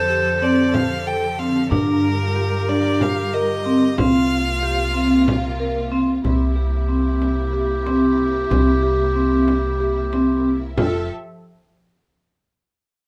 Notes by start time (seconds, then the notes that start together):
Already playing: F2 D3 F3 G4 A4 C5
0.10 G4
0.42 C4 D5
0.74 F5, frame drum
1.07 A4 G5
1.39 C4 F5, frame drum
1.71 G2 G3 D4 F4 G4 A#4, frame drum
2.36 G4
2.69 D4 D5
3.01 F5, frame drum
3.34 A#4 D#5
3.66 C4, frame drum
3.96 C2 C3 A#3 C4 F4 F5, frame drum
4.63 G4
4.94 C4
5.28 frame drum
5.60 A#4
5.92 C4
6.23 C2 C3 A#3 C4 E4 G4, frame drum
6.56 G4
6.88 C4
7.22 frame drum
7.53 G4
7.86 C4, frame drum
8.50 C2 C4, frame drum
8.83 G4
9.15 C4
9.48 frame drum
9.80 G4
10.13 C4, frame drum
10.77 F1 F3 F4 G4 A4 E5, frame drum